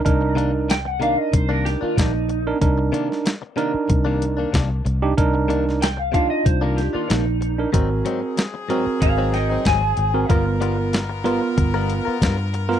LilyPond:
<<
  \new Staff \with { instrumentName = "Clean electric guitar" } { \time 4/4 \key c \minor \tempo 4 = 94 g''8 r8 g''16 fis''16 f''16 ees''16 c''16 bes'16 g'16 f'16 ees'4 | r1 | r4 g''16 f''16 f''16 ees''16 c''16 bes'16 g'16 f'16 ees'4 | r2 <aes' f''>8 <ees'' g''>8 aes''4 |
r1 | }
  \new Staff \with { instrumentName = "Tine electric piano" } { \time 4/4 \key c \minor <d' ees' bes'>4 r8 <d' ees' bes'>4. r8. <d' ees' bes'>16 | <d' ees' bes'>4 r8 <d' ees' bes'>4. r8. <d' ees' g'>16 | <d' ees' bes'>4 r8 <d' ees' f'>4. r8. <d' ees' bes'>16 | <c' ges' bes'>4 r8 <c' ges' bes'>4. r8. <c' ges' bes'>16 |
<b f' ais'>4 r8 <b f' ais'>4. r8. <b f' ais'>16 | }
  \new Staff \with { instrumentName = "Horn section" } { \time 4/4 \key c \minor r1 | r1 | r1 | <ges c' aes'>1 |
<b f' ais'>1 | }
  \new Staff \with { instrumentName = "Clean electric guitar" } { \time 4/4 \key c \minor r8 <c ees bes d'>16 r8. <c ees bes d'>16 r8 <c ees bes d'>16 r16 <ees bes d'>16 <c ees bes d'>16 r8. | r8 <c ees bes d'>16 r8. <c ees bes d'>16 r8 <c ees bes d'>16 r16 <ees bes d'>16 <c ees bes d'>16 r8. | r8 <c ees bes d'>16 r8. <c ees bes d'>16 r8 <c ees bes d'>16 r16 <ees bes d'>16 <c ees bes d'>16 r8. | <aes, ges c' ees'>16 r16 <aes, ges c' ees'>16 r8. <aes, ges c' ees'>16 r8 <aes, ges c' ees'>16 r16 <ges c' ees'>16 <aes, ges c' ees'>16 r8. |
<g b f' ais'>16 r16 <g b f' ais'>16 r8. <g b f' ais'>16 r8 <g b f' ais'>16 r16 <b f' ais'>16 <g b f' ais'>16 r8. | }
  \new Staff \with { instrumentName = "Fingered electric bass" } { \clef bass \time 4/4 \key c \minor c,2 c,8. r16 bes,,4 | c,8 r4. c,4 c,8 c,8 | c,2 c,8. r16 bes,,4 | aes,,8 r4. aes,,4 aes,,8 aes,,8 |
g,,2 g,,8. r16 g,4 | }
  \new DrumStaff \with { instrumentName = "Drums" } \drummode { \time 4/4 <hh bd>8 hh8 <hh sn>8 hh8 <hh bd>8 <hh sn>8 <hh bd sn>8 hh8 | <hh bd>8 hh16 sn16 <hh sn>8 hh8 <hh bd>8 hh8 <hh bd sn>8 hh8 | <hh bd>8 hh16 sn16 <hh sn>8 <hh bd>8 <hh bd>8 <hh sn>8 <hh sn>8 hh8 | <hh bd>8 hh8 <hh sn>8 hh8 <hh bd>8 <hh sn>8 <hh bd sn>8 hh8 |
<hh bd>8 hh8 <hh sn>8 hh8 <hh bd>8 hh8 <hh bd sn>8 hh16 sn16 | }
>>